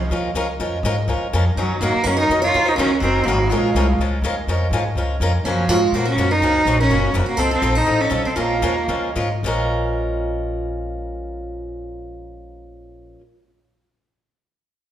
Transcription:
0.10 D#2 F3 G#3 C#4 F4 A#4
0.34 C#2 F3 G#3 C#4 F4 A#4
0.60 F2 F3 G#3 C#4 F4 A#4
0.83 G#2 F3 G#3 C#4 F4 A#4
1.08 C#2 F3 G#3 C#4 F4 A#4
1.21 muted upright bass stroke
1.33 F2 F3 G#3 C#4 F4 A#4
1.56 F#2 D#3 F#3 C#4 D#4 A#4
1.81 G#2 D#3 F#3 A#3 C#4 D#4 F#4 A#4
1.94 muted upright bass stroke
2.04 F#2 D#3 F#3 C#4 D#4 A#4
2.17 D#4 A#4
2.29 F2 D#3 F#3 C#4 D#4 A#4
2.42 F4 C#5
2.54 D#2 D#3 F#3 C#4 D#4 A#4
2.65 D#4 C5
2.76 C#2 D#3 F#3 C#4 D#4 A#4
3.00 F#1 D#3 F#3 C4 C#4 D#4 F#4 A#4
3.24 G#1 A#3 F#4
3.28 D#3 F#3 C#4 D#4 A#4
3.49 A#1 F3 G#3 C#4 F4 A#4
3.74 C2 F3 G#3 C#4 F4 A#4
3.99 C#2 F3 G#3 C#4 F4 A#4
4.22 D#2 F3 G#3 C#4 F4 A#4
4.47 F2 F3 G#3 C#4 F4 A#4
4.71 G#2 F3 G#3 C#4 F4 A#4
4.95 C#2 F3 G#3 C#4 F4 A#4
5.20 F2 F3 G#3 C#4 F4 A#4
5.44 F#2 C#3 F3 A#3 C#4 F#4
5.68 G#2 C#3 F3 G#3 A#3 C#4 F4 F#4
5.92 A#2 C#3 F3 A#3 C#4 F#4
5.96 F#4
6.05 C#4 A#4
6.16 F#2 C#3 F3 A#3 C#4 F#4
6.31 D#4 A#4
6.41 C#2 C#3 F3 A#3 C#4 F#4
6.65 A#1 C#3 F3 A#3 C#4 F#4
6.80 C#4 A#4
6.90 F#1 C#3 F3 A#3 C#4 F#4
7.13 F1 C#3 F3 A#3 C#4 F#4
7.26 A#3 F#4, muted upright bass stroke
7.37 C2 F3 C4 D#4 A4
7.51 C4 A4
7.62 A#1 F3 C4 D#4 A4
7.75 D#4 C5
7.86 A1 F3 C4 D#4 A4
8.00 C#4 A4
8.10 B1 F3 C4 D#4 A4
8.25 C4 A4, muted upright bass stroke
8.36 A#1 F3 G#3 A#3 C#4 F4 A#4
8.62 D#2 F3 G#3 C#4 F4 A#4
8.88 C#2 F3 G#3 C#4 F4 A#4
9.15 G#2 F3 G#3 C#4 F4 A#4
9.43 A#1 A#2 F3 G#3 C#4
9.47 F4 A#4

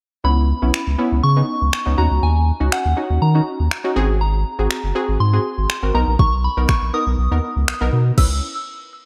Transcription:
0.24 C#2 B3 C#4 E4 B5
0.62 B1 B3 C#4 E4
0.74 finger snap
0.87 C#2
0.98 B3 C#4 E4
1.12 C#2
1.23 C#3 C#6
1.36 B3 C#4 D#4
1.62 C#2
1.73 finger snap
1.86 C#2 B3 C#4 D#4
1.98 D#2 C#4 D#4 F#4 A#5
2.11 C#2
2.23 D#2 G#5
2.60 C#2 C#4 D#4 F#4
2.72 F#5, finger snap
2.85 D#2
2.97 C#4 D#4 F#4
3.10 D#2
3.22 D#3 A#5
3.35 C#4 D#4 F#4
3.60 D#2
3.71 finger snap
3.84 C#4 D#4 F#4
3.96 G#1 C4 F#4 G#4
4.21 A#5
4.59 G#1 C4 F#4 G#4
4.71 finger snap
4.84 F#1
4.95 C4 F#4 G#4
5.09 G#1
5.20 G#2 C6
5.33 C4 F#4 G#4
5.58 G#1
5.70 finger snap
5.83 G#1 C4 F#4 A#4
5.94 B1 B3 D#4 A#4 A#5
6.07 A#1
6.19 B1 C#6, kick
6.44 B5
6.57 B1 B3 D#4 A#4
6.69 C#6, finger snap, kick
6.82 A#1
6.94 B3 D#4 A#4 D#6
7.07 B1
7.18 B1
7.31 D#2 B3 D#4 A#4
7.56 C#2
7.68 B1, finger snap
7.81 B1 B3 D#4 A#4
7.93 B2
8.18 C#2 C#4 E4 B4 E6, kick, crash

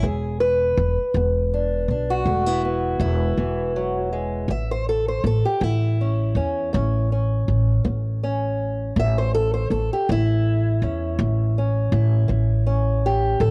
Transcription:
0.03 E1 E3 G#4
0.40 B4
0.77 E1
1.14 E1 B3
1.54 D4
1.88 B1 D4
2.10 F#4
2.26 E1 E3 A3
2.46 B3 E4
2.65 B3
3.00 E1 E4
3.37 E1 E3
3.76 F#3
4.12 G#3
4.48 A1 A2 E5
4.71 C5
4.89 A4
5.08 C5
5.24 A1 A4
5.45 G4
5.61 A1 E3 E4
6.01 C#4
6.35 E2 C#4
6.73 A1 A2 C#4
7.12 C#4
7.48 A1
7.84 A1 E3
8.23 C#4
8.96 A1 A2 E5
9.18 C5
9.35 A4
9.54 C5
9.70 A1 A4
9.93 G4
10.09 A1 E3 E4
10.82 E2 C#4
11.19 A1 A2
11.58 C#4
11.92 A1 E4
12.28 A1 E3
12.66 C#4
13.06 G4
13.40 A1 A2 A4

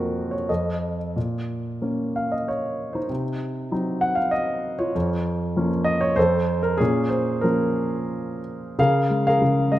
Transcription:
Already playing: F2 F3 A#3 C4 F#4 A#4
0.31 C#5
0.49 F2 A4 D#5
1.16 A#2
1.82 A#3 C#4
2.16 F5
2.32 D#5
2.48 C#5
2.93 D#4 C5
3.09 C3
3.71 F#3 C4 D#4
4.01 F#5
4.15 F5
4.31 D#5
4.79 F4 C#5
4.95 F2
5.56 F3 A#3 C#4
5.84 D#5
6.01 C#5
6.16 F2 A4 C5
6.63 A#4
6.78 A#2 C#4 G#4
7.09 C5
7.41 F3 A#3 C#4 A#4
8.79 C#3 G#4 A#4 F5
9.10 G#3
9.27 G#4 A#4 F5
9.42 C#3
9.72 G#3 D#5

